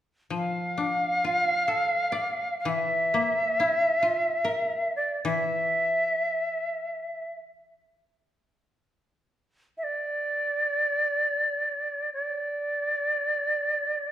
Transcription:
0.30 3.03 F3 soft
0.36 2.56 F5 medium
0.78 2.58 D4 soft
1.24 3.05 F4 soft
1.68 3.49 A4 soft
2.12 3.93 D5 soft
2.59 2.69 F5 soft
2.65 5.24 E3 soft
2.65 4.95 E5 medium
3.14 4.89 A#3 soft
3.60 5.33 E4 soft
4.03 5.76 F4 soft
4.45 6.19 A#4 soft
4.96 5.23 D5 medium
5.25 7.83 E3 soft
5.25 7.34 E5 medium
9.77 9.85 E5 soft
9.83 12.13 D5 medium
12.13 14.12 D5 medium

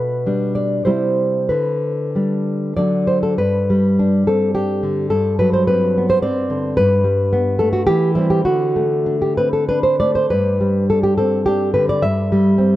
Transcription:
0.00 0.83 B2 medium
0.00 0.52 B4 medium
0.26 0.82 G3 soft
0.26 0.83 D4 soft
0.55 0.85 D5 medium
0.85 1.48 C3 soft
0.85 1.47 G3 soft
0.85 1.47 E4 soft
0.85 1.47 C5 medium
1.49 2.73 D3 soft
1.49 2.72 B4 medium
2.15 2.73 G3 soft
2.15 2.74 D4 soft
2.77 3.37 D3 soft
2.77 3.36 F#3 soft
2.77 3.35 D4 soft
2.77 3.07 D5 medium
3.07 3.22 C5 medium
3.23 3.38 A4 medium
3.38 5.08 G2 soft
3.38 4.23 B4 medium
3.70 4.56 G3 soft
3.99 4.54 D4 soft
4.27 5.12 C4 soft
4.27 4.54 A4 medium
4.55 5.12 D4 soft
4.55 5.09 G4 medium
4.83 5.11 D3 soft
5.10 6.74 G2 medium
5.10 5.38 A4 medium
5.39 6.23 F#3 soft
5.39 5.53 B4 medium
5.53 5.67 C5 medium
5.67 6.22 C4 soft
5.67 6.08 B4 medium
5.98 6.78 B3 soft
6.10 6.22 C5 medium
6.22 6.78 C4 medium
6.22 6.75 D5 medium
6.50 6.77 D3 soft
6.77 7.85 G2 medium
6.77 7.56 B4 medium
7.04 7.88 G3 medium
7.33 7.89 B3 medium
7.59 7.88 A3 soft
7.59 7.72 A4 medium
7.73 7.86 F#4 medium
7.87 8.45 E3 medium
7.87 8.15 G4 medium
8.15 8.43 G3 soft
8.15 8.44 C4 soft
8.15 8.30 E4 medium
8.30 8.45 G4 medium
8.45 10.26 D3 medium
8.45 9.18 F#4 medium
8.76 9.38 A3 soft
9.06 9.69 D4 soft
9.22 9.37 G4 medium
9.37 10.31 C4 soft
9.37 9.53 B4 medium
9.53 9.68 A4 medium
9.69 10.32 D4 soft
9.69 9.83 B4 medium
9.83 9.99 C5 medium
10.00 10.31 A3 soft
10.00 10.15 D5 medium
10.15 10.30 C5 medium
10.30 12.00 G2 medium
10.30 10.88 B4 medium
10.60 11.18 G3 soft
10.90 11.46 D4 soft
10.90 11.03 A4 medium
11.03 11.17 G4 medium
11.18 12.03 C4 soft
11.18 11.45 A4 medium
11.46 12.04 D4 soft
11.46 11.73 G4 medium
11.74 12.03 D3 soft
11.74 11.89 B4 medium
11.89 12.03 D5 medium
12.02 12.76 G2 medium
12.02 12.76 E5 medium
12.32 12.76 G3 medium
12.58 12.76 C4 medium

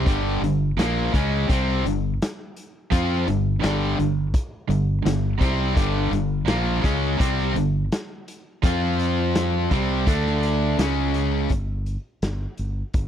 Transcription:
0.07 0.39 G1 medium
0.07 0.41 G2 medium
0.07 0.41 D3 medium
0.07 0.42 G3 medium
0.07 kick loud
0.07 closed hi-hat medium
0.42 0.75 G1 medium
0.42 0.71 G2 medium
0.42 0.71 D3 medium
0.42 closed hi-hat medium
0.77 1.10 A#1 loud
0.77 1.13 A#2 medium
0.77 1.13 F3 medium
0.77 1.13 A#3 medium
0.77 snare loud
0.77 closed hi-hat medium
1.14 1.47 C#2 loud
1.14 1.49 C#3 medium
1.14 1.49 G#3 loud
1.14 1.50 C#4 loud
1.14 kick medium
1.14 closed hi-hat medium
1.50 1.82 C2 medium
1.50 1.84 C3 medium
1.50 1.85 G3 medium
1.50 1.85 C4 loud
1.50 kick loud
1.50 closed hi-hat medium
1.85 2.18 G1 medium
1.85 2.14 G2 medium
1.85 2.14 D3 medium
1.85 closed hi-hat medium
2.22 snare loud
2.22 closed hi-hat medium
2.57 closed hi-hat medium
2.91 3.25 F2 medium
2.91 3.26 F3 loud
2.91 3.26 C4 loud
2.91 3.26 F4 loud
2.91 kick medium
2.91 closed hi-hat medium
3.27 3.61 G1 medium
3.27 3.56 G2 medium
3.27 3.56 D3 medium
3.27 closed hi-hat medium
3.62 3.97 G1 loud
3.62 3.97 G2 medium
3.62 3.97 D3 medium
3.62 3.97 G3 medium
3.62 snare loud
3.62 closed hi-hat medium
3.99 4.32 G1 medium
3.99 4.27 G2 medium
3.99 4.27 D3 medium
3.99 closed hi-hat medium
4.34 kick loud
4.34 closed hi-hat medium
4.69 5.03 G1 medium
4.69 4.98 G2 medium
4.69 4.99 D3 medium
4.69 closed hi-hat medium
5.05 5.39 G1 medium
5.05 5.34 G2 medium
5.05 5.34 D3 medium
5.05 snare loud
5.05 closed hi-hat medium
5.41 5.74 C2 loud
5.41 5.76 C3 medium
5.41 5.76 G3 medium
5.41 5.76 C4 loud
5.41 kick loud
5.41 closed hi-hat medium
5.76 6.10 G1 medium
5.76 6.11 G2 medium
5.76 6.12 D3 medium
5.76 6.12 G3 loud
5.76 kick loud
5.76 closed hi-hat medium
6.11 6.45 G1 medium
6.11 6.42 G2 medium
6.11 6.42 D3 medium
6.11 closed hi-hat medium
6.47 6.81 A#1 loud
6.47 6.83 A#2 medium
6.47 6.84 F3 loud
6.47 6.84 A#3 medium
6.47 snare loud
6.47 closed hi-hat medium
6.84 7.18 C#2 medium
6.84 7.19 C#3 loud
6.84 7.19 G#3 medium
6.84 7.20 C#4 loud
6.84 kick loud
6.84 closed hi-hat medium
7.19 7.53 C2 loud
7.19 7.54 C3 medium
7.19 7.55 G3 medium
7.19 7.55 C4 loud
7.19 kick loud
7.19 closed hi-hat medium
7.39 snare soft
7.54 7.88 G1 medium
7.54 7.85 G2 medium
7.54 7.85 D3 medium
7.54 closed hi-hat medium
7.92 snare loud
7.92 closed hi-hat medium
8.28 closed hi-hat medium
8.63 9.67 F2 medium
8.63 9.71 F3 medium
8.63 9.71 C4 loud
8.63 9.71 F4 loud
8.63 kick loud
8.63 closed hi-hat medium
8.99 closed hi-hat medium
9.35 snare loud
9.35 closed hi-hat loud
9.71 10.05 C2 medium
9.71 10.06 C3 medium
9.71 10.07 G3 loud
9.71 10.07 C4 loud
9.71 kick loud
9.71 closed hi-hat medium
10.07 10.75 D2 medium
10.07 10.77 D3 medium
10.07 10.78 A3 medium
10.07 10.78 D4 loud
10.07 kick loud
10.07 closed hi-hat loud
10.26 snare soft
10.43 closed hi-hat medium
10.78 11.46 C#2 medium
10.78 11.50 C#3 medium
10.78 11.50 G#3 medium
10.78 11.50 C#4 loud
10.78 snare loud
10.78 closed hi-hat loud
11.14 closed hi-hat medium
11.49 11.96 G1 medium
11.49 kick medium
11.49 closed hi-hat medium
11.86 closed hi-hat soft
12.22 12.45 G1 medium
12.22 snare medium
12.22 closed hi-hat medium
12.57 12.82 G1 medium
12.57 closed hi-hat medium
12.94 13.08 G1 medium
12.94 kick loud
12.94 closed hi-hat medium

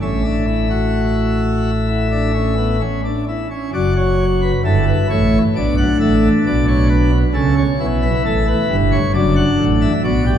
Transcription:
0.01 2.81 A1 medium
0.01 2.81 A2 medium
0.01 0.22 C#4 medium
0.01 2.81 E5 medium
0.25 0.45 D4 medium
0.47 0.68 E4 medium
0.70 1.70 F#4 medium
1.88 2.08 E4 medium
2.12 2.31 D4 medium
2.34 2.54 C#4 medium
2.57 2.77 B3 medium
2.81 3.01 C#4 medium
3.05 3.24 D4 medium
3.29 3.48 E4 medium
3.51 3.70 C#4 medium
3.73 4.51 F#1 medium
3.73 4.52 F#2 medium
3.73 4.52 F#4 medium
3.73 3.93 D5 medium
3.97 4.24 C#5 medium
4.42 4.61 B4 medium
4.64 4.92 G1 medium
4.64 4.92 G2 medium
4.64 5.43 E4 medium
4.64 4.84 A4 medium
4.88 5.07 B4 medium
5.10 5.38 A1 medium
5.10 5.38 A2 medium
5.10 5.38 C#5 medium
5.55 5.83 B1 medium
5.55 5.83 B2 medium
5.55 7.11 D4 medium
5.55 5.75 D5 medium
5.78 5.97 F#5 medium
6.00 6.28 A1 medium
6.00 6.28 A2 medium
6.00 6.28 E5 medium
6.46 7.23 B1 medium
6.46 7.24 B2 medium
6.46 6.65 D5 medium
6.68 6.87 C#5 medium
6.89 7.17 B4 medium
7.34 7.62 C#2 medium
7.34 7.63 C#3 medium
7.34 7.62 C#4 medium
7.34 7.54 A4 medium
7.57 7.86 C#5 medium
7.80 8.08 B1 medium
7.80 8.08 B2 medium
7.80 8.96 E4 medium
8.02 8.22 B4 medium
8.26 8.53 A1 medium
8.26 8.53 A2 medium
8.26 8.45 A4 medium
8.47 8.75 B4 medium
8.70 8.98 G1 medium
8.70 8.98 G2 medium
8.92 9.12 C#5 medium
9.14 9.42 F#1 medium
9.14 9.42 F#2 medium
9.14 9.92 D4 medium
9.14 9.34 D5 loud
9.36 9.64 F#5 loud
9.58 9.87 A1 medium
9.58 9.87 A2 medium
9.81 10.01 E5 medium
10.04 10.32 B1 medium
10.04 10.32 B2 medium
10.04 10.24 F#4 medium
10.04 10.38 D5 loud
10.26 10.38 G4 medium

